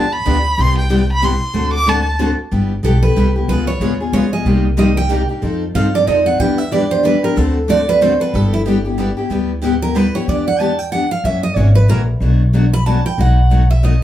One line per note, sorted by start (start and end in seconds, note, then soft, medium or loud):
0.00 0.21 E2 loud
0.00 0.14 A5 medium
0.13 0.62 B5 loud
0.25 0.53 D2 medium
0.25 0.36 D3 medium
0.25 0.36 F3 medium
0.25 0.36 B3 loud
0.25 0.37 D4 medium
0.25 0.37 G4 medium
0.58 1.35 C2 loud
0.58 0.78 C3 medium
0.58 0.78 G3 medium
0.58 0.78 B3 medium
0.58 0.78 E4 medium
0.58 0.78 G4 medium
0.58 0.78 C6 loud
0.78 1.08 G5 medium
0.90 1.01 C3 medium
0.90 1.01 G3 loud
0.90 1.01 B3 loud
0.90 1.01 E4 loud
0.90 1.01 G4 loud
1.12 1.25 B5 loud
1.22 1.33 C3 medium
1.22 1.33 G3 loud
1.22 1.33 B3 medium
1.22 1.33 E4 loud
1.22 1.34 G4 loud
1.22 1.73 C6 loud
1.53 2.32 D2 loud
1.53 1.74 D3 medium
1.53 1.74 A3 medium
1.53 1.74 C4 medium
1.53 1.75 F#4 medium
1.53 1.75 A4 medium
1.74 1.90 D6 loud
1.87 1.98 D3 loud
1.87 1.98 A3 loud
1.87 1.98 C4 loud
1.87 1.98 F#4 loud
1.87 1.98 A4 loud
1.87 2.20 A5 loud
2.20 2.30 D3 loud
2.20 2.30 A3 medium
2.20 2.30 C4 medium
2.20 2.31 F#4 loud
2.20 2.31 A4 loud
2.52 2.78 G1 medium
2.52 2.71 G3 medium
2.52 2.72 B3 medium
2.52 2.72 E4 medium
2.52 2.72 G4 medium
2.83 3.11 B1 medium
2.83 2.95 G3 medium
2.83 2.95 B3 medium
2.83 2.95 E4 medium
2.83 2.96 G4 loud
2.83 3.03 A4 medium
3.03 3.15 B3 soft
3.03 3.16 E4 soft
3.03 3.16 G4 medium
3.03 3.33 B4 medium
3.16 3.44 C2 medium
3.16 3.27 G3 medium
3.16 3.27 B3 medium
3.16 3.27 E4 loud
3.16 3.28 G4 loud
3.36 3.49 B3 medium
3.36 3.49 E4 medium
3.36 3.48 G4 medium
3.48 3.74 C#2 medium
3.48 3.69 C#3 medium
3.48 3.69 G#3 medium
3.48 3.69 B3 medium
3.48 3.69 F4 medium
3.48 3.69 G#4 medium
3.48 3.67 B4 medium
3.67 3.98 C#5 medium
3.80 4.08 D#2 medium
3.80 3.92 C#3 medium
3.80 3.92 G#3 medium
3.80 3.92 B3 loud
3.80 3.92 F4 medium
3.80 3.92 G#4 loud
4.00 4.13 B3 soft
4.00 4.13 F4 medium
4.00 4.13 G#4 medium
4.13 4.40 C#2 medium
4.13 4.24 C#3 medium
4.13 4.25 G#3 medium
4.13 4.25 B3 medium
4.13 4.25 F4 medium
4.13 4.25 G#4 medium
4.13 4.32 C#5 medium
4.33 4.46 B3 medium
4.33 4.46 F4 medium
4.33 4.45 G#4 medium
4.33 4.63 D#5 medium
4.45 5.23 C2 medium
4.45 4.66 C3 medium
4.45 4.66 G3 medium
4.45 4.66 A#3 medium
4.45 4.66 D#4 medium
4.45 4.66 G4 medium
4.77 4.88 C3 medium
4.77 4.88 G3 loud
4.77 4.88 A#3 loud
4.77 4.89 D#4 loud
4.77 4.89 G4 loud
4.77 4.97 D#5 medium
4.97 5.09 A#3 soft
4.97 5.10 D#4 medium
4.97 5.10 G4 medium
4.97 5.27 G5 loud
5.10 5.21 C3 medium
5.10 5.21 G3 medium
5.10 5.21 A#3 medium
5.10 5.22 D#4 loud
5.10 5.22 G4 loud
5.29 5.42 A#3 soft
5.29 5.42 D#4 medium
5.29 5.42 G4 medium
5.42 5.68 F2 medium
5.42 5.62 F3 medium
5.42 5.63 C4 medium
5.42 5.63 D#4 medium
5.42 5.63 A4 medium
5.74 6.02 G2 medium
5.74 5.86 F3 loud
5.74 5.86 C4 medium
5.74 5.86 D#4 loud
5.74 5.87 A4 loud
5.74 5.94 F5 medium
5.94 6.06 C4 soft
5.94 6.06 D#4 medium
5.94 6.07 A4 medium
5.94 6.07 D5 loud
6.07 6.35 F2 medium
6.07 6.18 F3 medium
6.07 6.18 C4 medium
6.07 6.18 D#4 medium
6.07 6.19 A4 loud
6.07 6.26 D#5 medium
6.25 6.40 C4 soft
6.25 6.39 D#4 medium
6.25 6.39 A4 medium
6.25 6.39 F#5 medium
6.39 7.17 E2 medium
6.39 6.60 E3 medium
6.39 6.60 G3 medium
6.39 6.60 B3 medium
6.39 6.60 D4 medium
6.39 6.60 E4 medium
6.39 6.60 G4 medium
6.39 6.61 B4 medium
6.39 6.58 G5 loud
6.58 6.71 E5 loud
6.71 6.82 E3 medium
6.71 6.83 G3 medium
6.71 6.83 B3 loud
6.71 6.83 D4 loud
6.71 6.83 E4 medium
6.71 6.83 G4 loud
6.71 6.84 B4 loud
6.71 6.91 D5 medium
6.90 7.03 B3 soft
6.90 7.03 D4 soft
6.90 7.03 G4 medium
6.90 7.04 C5 medium
7.03 7.14 E3 medium
7.03 7.15 G3 medium
7.03 7.15 B3 medium
7.03 7.15 D4 medium
7.03 7.16 E4 medium
7.03 7.15 G4 loud
7.03 7.23 B4 medium
7.03 7.16 B4 loud
7.22 7.36 B3 soft
7.22 7.36 D4 medium
7.22 7.36 G4 medium
7.22 7.37 A#4 medium
7.36 8.14 D2 medium
7.36 7.56 D3 medium
7.36 7.56 A3 medium
7.36 7.56 C4 medium
7.36 7.57 F#4 medium
7.36 7.69 A4 medium
7.36 7.57 A4 medium
7.68 7.79 D3 medium
7.68 7.79 A3 medium
7.68 7.79 C4 medium
7.68 7.80 F#4 medium
7.68 7.80 A4 loud
7.68 7.88 D5 medium
7.88 8.00 C4 soft
7.88 8.01 F#4 medium
7.88 8.01 A4 medium
7.88 8.01 B4 loud
8.01 8.12 D3 medium
8.01 8.12 A3 medium
8.01 8.12 C4 loud
8.01 8.12 F#4 loud
8.01 8.12 A4 loud
8.01 8.20 C5 loud
8.20 8.34 C4 soft
8.20 8.33 F#4 medium
8.20 8.33 A4 medium
8.20 8.35 B4 medium
8.34 9.11 G1 loud
8.34 8.54 G3 medium
8.34 8.54 B3 medium
8.34 8.54 E4 medium
8.34 8.54 G4 medium
8.34 8.53 A4 medium
8.54 8.61 E4 medium
8.67 8.77 G3 loud
8.67 8.77 B3 loud
8.67 8.78 E4 loud
8.67 8.78 G4 loud
8.85 8.98 B3 medium
8.85 8.98 E4 medium
8.85 8.97 G4 medium
8.99 9.09 G3 loud
8.99 9.09 B3 loud
8.99 9.10 E4 medium
8.99 9.10 G4 medium
9.17 9.30 B3 medium
9.17 9.30 E4 medium
9.17 9.30 G4 medium
9.30 10.08 D2 medium
9.30 9.51 G3 medium
9.30 9.51 B3 medium
9.30 9.51 E4 medium
9.30 9.51 G4 medium
9.63 9.74 G3 medium
9.63 9.74 B3 loud
9.63 9.74 E4 loud
9.63 9.74 G4 loud
9.82 9.95 B3 medium
9.82 9.95 E4 medium
9.82 9.95 G4 medium
9.82 9.96 A#4 loud
9.96 10.06 G3 medium
9.96 10.06 B3 medium
9.96 10.06 E4 loud
9.96 10.07 G4 loud
9.96 10.14 B4 medium
10.15 10.27 B3 medium
10.15 10.28 E4 medium
10.15 10.27 G4 medium
10.15 10.27 C#5 medium
10.27 11.05 E2 medium
10.27 10.48 E3 medium
10.27 10.48 B3 medium
10.27 10.48 D4 medium
10.27 10.48 G4 medium
10.27 10.47 D5 medium
10.48 10.60 F#5 medium
10.60 10.70 E3 medium
10.60 10.71 B3 loud
10.60 10.71 D4 loud
10.60 10.71 G4 loud
10.60 10.79 A5 loud
10.79 10.92 G5 loud
10.92 11.03 E3 medium
10.92 11.03 B3 medium
10.92 11.03 D4 medium
10.92 11.03 G4 medium
10.92 11.11 F#5 medium
11.11 11.24 F5 medium
11.24 11.50 F#2 medium
11.24 11.44 C#3 medium
11.24 11.44 E3 medium
11.24 11.45 A#3 medium
11.24 11.45 C#4 medium
11.24 11.45 F#4 medium
11.24 11.43 E5 medium
11.43 11.56 D#5 medium
11.56 11.84 G#1 medium
11.56 11.67 C#3 medium
11.56 11.67 E3 loud
11.56 11.68 A#3 medium
11.56 11.68 C#4 loud
11.56 11.68 F#4 loud
11.56 11.75 C#5 medium
11.75 11.88 B4 medium
11.88 12.16 A#1 medium
11.88 11.99 C#3 medium
11.88 12.00 E3 loud
11.88 12.00 A#3 medium
11.88 12.00 C#4 loud
11.88 12.00 F#4 medium
11.88 12.01 A#4 medium
12.20 12.98 B1 medium
12.20 12.41 B2 medium
12.20 12.41 F#3 medium
12.20 12.41 A3 medium
12.20 12.42 D4 medium
12.20 12.42 F#4 medium
12.53 12.64 B2 loud
12.53 12.64 F#3 loud
12.53 12.65 A3 medium
12.53 12.65 D4 loud
12.53 12.65 F#4 loud
12.73 12.86 B5 loud
12.86 12.97 B2 medium
12.86 12.97 F#3 medium
12.86 12.97 A3 medium
12.86 12.97 D4 loud
12.86 12.97 F#4 loud
12.86 13.05 A5 medium
13.06 13.18 G5 medium
13.18 13.96 B1 medium
13.18 13.38 B2 medium
13.18 13.38 F#3 medium
13.18 13.39 A3 medium
13.18 13.38 D#4 medium
13.18 13.39 F#4 medium
13.18 13.67 F#5 medium
13.50 13.61 B2 medium
13.50 13.61 F#3 medium
13.50 13.62 A3 loud
13.50 13.62 D#4 loud
13.50 13.62 F#4 loud
13.71 13.83 E5 medium
13.83 13.94 B2 medium
13.83 13.94 F#3 medium
13.83 13.94 A3 medium
13.83 13.94 D#4 medium
13.83 13.94 F#4 medium
13.83 14.02 D#5 medium